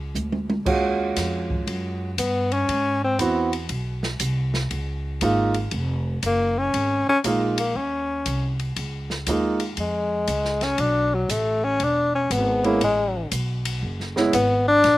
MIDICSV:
0, 0, Header, 1, 6, 480
1, 0, Start_track
1, 0, Key_signature, -5, "major"
1, 0, Tempo, 506329
1, 627, Time_signature, 4, 2, 24, 8
1, 14199, End_track
2, 0, Start_track
2, 0, Title_t, "Grand piano"
2, 0, Program_c, 0, 0
2, 621, Note_on_c, 0, 56, 60
2, 627, Note_on_c, 0, 61, 56
2, 634, Note_on_c, 0, 65, 57
2, 640, Note_on_c, 0, 66, 65
2, 1968, Note_off_c, 0, 56, 0
2, 1971, Note_off_c, 0, 61, 0
2, 1974, Note_off_c, 0, 65, 0
2, 1977, Note_off_c, 0, 66, 0
2, 3021, Note_on_c, 0, 59, 60
2, 3032, Note_on_c, 0, 60, 53
2, 3038, Note_on_c, 0, 64, 52
2, 3039, Note_on_c, 0, 66, 69
2, 3311, Note_off_c, 0, 59, 0
2, 3317, Note_off_c, 0, 60, 0
2, 3319, Note_off_c, 0, 64, 0
2, 3320, Note_off_c, 0, 66, 0
2, 4946, Note_on_c, 0, 56, 60
2, 4951, Note_on_c, 0, 58, 55
2, 4952, Note_on_c, 0, 63, 57
2, 4960, Note_on_c, 0, 65, 67
2, 5233, Note_off_c, 0, 56, 0
2, 5236, Note_off_c, 0, 58, 0
2, 5236, Note_off_c, 0, 63, 0
2, 5240, Note_off_c, 0, 65, 0
2, 6868, Note_on_c, 0, 56, 61
2, 6869, Note_on_c, 0, 58, 55
2, 6878, Note_on_c, 0, 63, 55
2, 6883, Note_on_c, 0, 65, 68
2, 7154, Note_off_c, 0, 56, 0
2, 7155, Note_off_c, 0, 58, 0
2, 7159, Note_off_c, 0, 63, 0
2, 7162, Note_off_c, 0, 65, 0
2, 8798, Note_on_c, 0, 56, 57
2, 8801, Note_on_c, 0, 58, 57
2, 8809, Note_on_c, 0, 63, 52
2, 8809, Note_on_c, 0, 65, 63
2, 9079, Note_off_c, 0, 56, 0
2, 9080, Note_off_c, 0, 58, 0
2, 9084, Note_off_c, 0, 63, 0
2, 9084, Note_off_c, 0, 65, 0
2, 11978, Note_on_c, 0, 56, 59
2, 11986, Note_on_c, 0, 59, 55
2, 11993, Note_on_c, 0, 61, 55
2, 11996, Note_on_c, 0, 64, 66
2, 12126, Note_off_c, 0, 56, 0
2, 12130, Note_off_c, 0, 59, 0
2, 12133, Note_off_c, 0, 61, 0
2, 12135, Note_off_c, 0, 64, 0
2, 13423, Note_on_c, 0, 56, 69
2, 13430, Note_on_c, 0, 59, 62
2, 13437, Note_on_c, 0, 61, 62
2, 13446, Note_on_c, 0, 64, 77
2, 13568, Note_off_c, 0, 56, 0
2, 13571, Note_off_c, 0, 59, 0
2, 13575, Note_off_c, 0, 61, 0
2, 13580, Note_off_c, 0, 64, 0
2, 14199, End_track
3, 0, Start_track
3, 0, Title_t, "Tenor saxophone"
3, 0, Program_c, 1, 66
3, 2074, Note_on_c, 1, 59, 79
3, 2396, Note_on_c, 1, 61, 94
3, 2410, Note_off_c, 1, 59, 0
3, 2871, Note_off_c, 1, 61, 0
3, 2881, Note_on_c, 1, 60, 82
3, 3024, Note_off_c, 1, 60, 0
3, 5932, Note_on_c, 1, 58, 81
3, 6242, Note_on_c, 1, 61, 87
3, 6257, Note_off_c, 1, 58, 0
3, 6714, Note_off_c, 1, 61, 0
3, 6720, Note_on_c, 1, 61, 88
3, 6812, Note_off_c, 1, 61, 0
3, 7197, Note_on_c, 1, 58, 76
3, 7361, Note_on_c, 1, 61, 73
3, 7376, Note_off_c, 1, 58, 0
3, 8152, Note_off_c, 1, 61, 0
3, 9289, Note_on_c, 1, 56, 73
3, 10080, Note_on_c, 1, 61, 79
3, 10095, Note_off_c, 1, 56, 0
3, 10237, Note_on_c, 1, 62, 88
3, 10251, Note_off_c, 1, 61, 0
3, 10565, Note_on_c, 1, 54, 66
3, 10579, Note_off_c, 1, 62, 0
3, 10720, Note_on_c, 1, 57, 71
3, 10734, Note_off_c, 1, 54, 0
3, 11035, Note_on_c, 1, 61, 88
3, 11049, Note_off_c, 1, 57, 0
3, 11219, Note_on_c, 1, 62, 85
3, 11233, Note_off_c, 1, 61, 0
3, 11511, Note_off_c, 1, 62, 0
3, 11516, Note_on_c, 1, 61, 79
3, 11679, Note_on_c, 1, 59, 80
3, 11693, Note_off_c, 1, 61, 0
3, 11989, Note_on_c, 1, 58, 77
3, 12003, Note_off_c, 1, 59, 0
3, 12147, Note_off_c, 1, 58, 0
3, 12170, Note_on_c, 1, 56, 83
3, 12605, Note_off_c, 1, 56, 0
3, 13594, Note_on_c, 1, 59, 85
3, 13886, Note_off_c, 1, 59, 0
3, 13916, Note_on_c, 1, 62, 108
3, 14199, Note_off_c, 1, 62, 0
3, 14199, End_track
4, 0, Start_track
4, 0, Title_t, "Upright bass"
4, 0, Program_c, 2, 32
4, 0, Note_on_c, 2, 37, 78
4, 128, Note_off_c, 2, 37, 0
4, 138, Note_on_c, 2, 38, 79
4, 608, Note_off_c, 2, 38, 0
4, 625, Note_on_c, 2, 39, 78
4, 1091, Note_off_c, 2, 39, 0
4, 1106, Note_on_c, 2, 41, 83
4, 1572, Note_off_c, 2, 41, 0
4, 1583, Note_on_c, 2, 42, 81
4, 2050, Note_off_c, 2, 42, 0
4, 2064, Note_on_c, 2, 43, 83
4, 2531, Note_off_c, 2, 43, 0
4, 2546, Note_on_c, 2, 44, 78
4, 3012, Note_off_c, 2, 44, 0
4, 3024, Note_on_c, 2, 40, 78
4, 3491, Note_off_c, 2, 40, 0
4, 3503, Note_on_c, 2, 35, 76
4, 3970, Note_off_c, 2, 35, 0
4, 3983, Note_on_c, 2, 36, 86
4, 4450, Note_off_c, 2, 36, 0
4, 4465, Note_on_c, 2, 37, 81
4, 4931, Note_off_c, 2, 37, 0
4, 4944, Note_on_c, 2, 32, 83
4, 5411, Note_off_c, 2, 32, 0
4, 5421, Note_on_c, 2, 29, 84
4, 5889, Note_off_c, 2, 29, 0
4, 5905, Note_on_c, 2, 30, 86
4, 6371, Note_off_c, 2, 30, 0
4, 6387, Note_on_c, 2, 32, 77
4, 6683, Note_off_c, 2, 32, 0
4, 6864, Note_on_c, 2, 34, 81
4, 7331, Note_off_c, 2, 34, 0
4, 7345, Note_on_c, 2, 39, 76
4, 7811, Note_off_c, 2, 39, 0
4, 7827, Note_on_c, 2, 36, 82
4, 8292, Note_off_c, 2, 36, 0
4, 8308, Note_on_c, 2, 37, 80
4, 8772, Note_off_c, 2, 37, 0
4, 8787, Note_on_c, 2, 39, 82
4, 9252, Note_off_c, 2, 39, 0
4, 9265, Note_on_c, 2, 41, 79
4, 9730, Note_off_c, 2, 41, 0
4, 9743, Note_on_c, 2, 37, 84
4, 10209, Note_off_c, 2, 37, 0
4, 10223, Note_on_c, 2, 35, 81
4, 10689, Note_off_c, 2, 35, 0
4, 10702, Note_on_c, 2, 33, 85
4, 11169, Note_off_c, 2, 33, 0
4, 11181, Note_on_c, 2, 28, 81
4, 11648, Note_off_c, 2, 28, 0
4, 11663, Note_on_c, 2, 32, 87
4, 12129, Note_off_c, 2, 32, 0
4, 12144, Note_on_c, 2, 33, 82
4, 12610, Note_off_c, 2, 33, 0
4, 12622, Note_on_c, 2, 35, 86
4, 13089, Note_off_c, 2, 35, 0
4, 13104, Note_on_c, 2, 30, 85
4, 13570, Note_off_c, 2, 30, 0
4, 13587, Note_on_c, 2, 32, 89
4, 14051, Note_off_c, 2, 32, 0
4, 14066, Note_on_c, 2, 34, 79
4, 14199, Note_off_c, 2, 34, 0
4, 14199, End_track
5, 0, Start_track
5, 0, Title_t, "Muted upright bass strokes"
5, 6712, Note_on_c, 9, 29, 35
5, 6807, Note_off_c, 9, 29, 0
5, 14199, End_track
6, 0, Start_track
6, 0, Title_t, "Drums"
6, 142, Note_on_c, 9, 44, 50
6, 145, Note_on_c, 9, 48, 42
6, 237, Note_off_c, 9, 44, 0
6, 240, Note_off_c, 9, 48, 0
6, 307, Note_on_c, 9, 48, 55
6, 402, Note_off_c, 9, 48, 0
6, 470, Note_on_c, 9, 48, 67
6, 565, Note_off_c, 9, 48, 0
6, 626, Note_on_c, 9, 36, 64
6, 628, Note_on_c, 9, 49, 64
6, 721, Note_off_c, 9, 36, 0
6, 723, Note_off_c, 9, 49, 0
6, 1104, Note_on_c, 9, 44, 53
6, 1104, Note_on_c, 9, 51, 57
6, 1107, Note_on_c, 9, 36, 17
6, 1107, Note_on_c, 9, 38, 37
6, 1199, Note_off_c, 9, 44, 0
6, 1199, Note_off_c, 9, 51, 0
6, 1201, Note_off_c, 9, 36, 0
6, 1201, Note_off_c, 9, 38, 0
6, 1426, Note_on_c, 9, 36, 54
6, 1520, Note_off_c, 9, 36, 0
6, 1587, Note_on_c, 9, 36, 23
6, 1587, Note_on_c, 9, 51, 53
6, 1681, Note_off_c, 9, 36, 0
6, 1682, Note_off_c, 9, 51, 0
6, 2066, Note_on_c, 9, 36, 25
6, 2068, Note_on_c, 9, 44, 59
6, 2068, Note_on_c, 9, 51, 65
6, 2160, Note_off_c, 9, 36, 0
6, 2162, Note_off_c, 9, 44, 0
6, 2162, Note_off_c, 9, 51, 0
6, 2385, Note_on_c, 9, 51, 42
6, 2480, Note_off_c, 9, 51, 0
6, 2546, Note_on_c, 9, 36, 24
6, 2548, Note_on_c, 9, 51, 58
6, 2641, Note_off_c, 9, 36, 0
6, 2643, Note_off_c, 9, 51, 0
6, 3025, Note_on_c, 9, 36, 18
6, 3025, Note_on_c, 9, 44, 47
6, 3025, Note_on_c, 9, 51, 59
6, 3120, Note_off_c, 9, 36, 0
6, 3120, Note_off_c, 9, 44, 0
6, 3120, Note_off_c, 9, 51, 0
6, 3345, Note_on_c, 9, 51, 49
6, 3440, Note_off_c, 9, 51, 0
6, 3498, Note_on_c, 9, 51, 54
6, 3503, Note_on_c, 9, 36, 23
6, 3593, Note_off_c, 9, 51, 0
6, 3598, Note_off_c, 9, 36, 0
6, 3820, Note_on_c, 9, 38, 52
6, 3915, Note_off_c, 9, 38, 0
6, 3978, Note_on_c, 9, 44, 61
6, 3978, Note_on_c, 9, 51, 61
6, 3982, Note_on_c, 9, 36, 17
6, 4073, Note_off_c, 9, 44, 0
6, 4073, Note_off_c, 9, 51, 0
6, 4077, Note_off_c, 9, 36, 0
6, 4302, Note_on_c, 9, 38, 52
6, 4397, Note_off_c, 9, 38, 0
6, 4462, Note_on_c, 9, 51, 56
6, 4464, Note_on_c, 9, 36, 19
6, 4557, Note_off_c, 9, 51, 0
6, 4558, Note_off_c, 9, 36, 0
6, 4939, Note_on_c, 9, 44, 47
6, 4939, Note_on_c, 9, 51, 63
6, 4943, Note_on_c, 9, 36, 24
6, 5033, Note_off_c, 9, 44, 0
6, 5033, Note_off_c, 9, 51, 0
6, 5038, Note_off_c, 9, 36, 0
6, 5255, Note_on_c, 9, 51, 44
6, 5350, Note_off_c, 9, 51, 0
6, 5415, Note_on_c, 9, 51, 52
6, 5423, Note_on_c, 9, 36, 24
6, 5510, Note_off_c, 9, 51, 0
6, 5518, Note_off_c, 9, 36, 0
6, 5902, Note_on_c, 9, 44, 62
6, 5902, Note_on_c, 9, 51, 66
6, 5905, Note_on_c, 9, 36, 25
6, 5996, Note_off_c, 9, 44, 0
6, 5996, Note_off_c, 9, 51, 0
6, 6000, Note_off_c, 9, 36, 0
6, 6387, Note_on_c, 9, 36, 22
6, 6387, Note_on_c, 9, 51, 55
6, 6482, Note_off_c, 9, 36, 0
6, 6482, Note_off_c, 9, 51, 0
6, 6865, Note_on_c, 9, 44, 48
6, 6865, Note_on_c, 9, 51, 66
6, 6869, Note_on_c, 9, 36, 23
6, 6959, Note_off_c, 9, 44, 0
6, 6959, Note_off_c, 9, 51, 0
6, 6963, Note_off_c, 9, 36, 0
6, 7183, Note_on_c, 9, 51, 68
6, 7278, Note_off_c, 9, 51, 0
6, 7350, Note_on_c, 9, 36, 19
6, 7444, Note_off_c, 9, 36, 0
6, 7827, Note_on_c, 9, 44, 57
6, 7827, Note_on_c, 9, 51, 58
6, 7829, Note_on_c, 9, 36, 22
6, 7921, Note_off_c, 9, 44, 0
6, 7921, Note_off_c, 9, 51, 0
6, 7923, Note_off_c, 9, 36, 0
6, 8148, Note_on_c, 9, 51, 42
6, 8242, Note_off_c, 9, 51, 0
6, 8308, Note_on_c, 9, 51, 55
6, 8309, Note_on_c, 9, 36, 20
6, 8402, Note_off_c, 9, 51, 0
6, 8404, Note_off_c, 9, 36, 0
6, 8627, Note_on_c, 9, 38, 44
6, 8722, Note_off_c, 9, 38, 0
6, 8783, Note_on_c, 9, 44, 61
6, 8783, Note_on_c, 9, 51, 59
6, 8787, Note_on_c, 9, 36, 23
6, 8878, Note_off_c, 9, 44, 0
6, 8878, Note_off_c, 9, 51, 0
6, 8882, Note_off_c, 9, 36, 0
6, 9098, Note_on_c, 9, 51, 47
6, 9193, Note_off_c, 9, 51, 0
6, 9261, Note_on_c, 9, 51, 57
6, 9267, Note_on_c, 9, 36, 17
6, 9356, Note_off_c, 9, 51, 0
6, 9362, Note_off_c, 9, 36, 0
6, 9740, Note_on_c, 9, 44, 52
6, 9740, Note_on_c, 9, 51, 60
6, 9746, Note_on_c, 9, 36, 18
6, 9835, Note_off_c, 9, 44, 0
6, 9835, Note_off_c, 9, 51, 0
6, 9840, Note_off_c, 9, 36, 0
6, 9902, Note_on_c, 9, 38, 29
6, 9997, Note_off_c, 9, 38, 0
6, 10059, Note_on_c, 9, 51, 40
6, 10062, Note_on_c, 9, 38, 39
6, 10154, Note_off_c, 9, 51, 0
6, 10157, Note_off_c, 9, 38, 0
6, 10219, Note_on_c, 9, 51, 58
6, 10225, Note_on_c, 9, 36, 21
6, 10313, Note_off_c, 9, 51, 0
6, 10320, Note_off_c, 9, 36, 0
6, 10706, Note_on_c, 9, 36, 17
6, 10708, Note_on_c, 9, 44, 57
6, 10708, Note_on_c, 9, 51, 60
6, 10801, Note_off_c, 9, 36, 0
6, 10803, Note_off_c, 9, 44, 0
6, 10803, Note_off_c, 9, 51, 0
6, 11184, Note_on_c, 9, 51, 55
6, 11185, Note_on_c, 9, 36, 21
6, 11279, Note_off_c, 9, 51, 0
6, 11280, Note_off_c, 9, 36, 0
6, 11667, Note_on_c, 9, 36, 24
6, 11667, Note_on_c, 9, 44, 52
6, 11667, Note_on_c, 9, 51, 64
6, 11761, Note_off_c, 9, 36, 0
6, 11762, Note_off_c, 9, 44, 0
6, 11762, Note_off_c, 9, 51, 0
6, 11985, Note_on_c, 9, 51, 39
6, 12080, Note_off_c, 9, 51, 0
6, 12144, Note_on_c, 9, 51, 54
6, 12146, Note_on_c, 9, 36, 20
6, 12239, Note_off_c, 9, 51, 0
6, 12241, Note_off_c, 9, 36, 0
6, 12622, Note_on_c, 9, 44, 53
6, 12622, Note_on_c, 9, 51, 67
6, 12626, Note_on_c, 9, 36, 25
6, 12717, Note_off_c, 9, 44, 0
6, 12717, Note_off_c, 9, 51, 0
6, 12720, Note_off_c, 9, 36, 0
6, 12942, Note_on_c, 9, 51, 69
6, 13037, Note_off_c, 9, 51, 0
6, 13106, Note_on_c, 9, 36, 17
6, 13200, Note_off_c, 9, 36, 0
6, 13272, Note_on_c, 9, 38, 29
6, 13367, Note_off_c, 9, 38, 0
6, 13428, Note_on_c, 9, 38, 43
6, 13522, Note_off_c, 9, 38, 0
6, 13585, Note_on_c, 9, 36, 25
6, 13586, Note_on_c, 9, 44, 52
6, 13586, Note_on_c, 9, 51, 65
6, 13680, Note_off_c, 9, 36, 0
6, 13680, Note_off_c, 9, 44, 0
6, 13680, Note_off_c, 9, 51, 0
6, 14065, Note_on_c, 9, 36, 19
6, 14066, Note_on_c, 9, 51, 59
6, 14069, Note_on_c, 9, 38, 37
6, 14160, Note_off_c, 9, 36, 0
6, 14160, Note_off_c, 9, 51, 0
6, 14163, Note_off_c, 9, 38, 0
6, 14199, End_track
0, 0, End_of_file